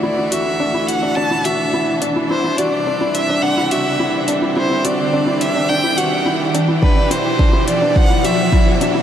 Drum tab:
HH |-x-x-x-x|-x-x-x-x|-x-x-x-x|-x-x-x-x|
BD |--------|--------|--------|o-o-o-o-|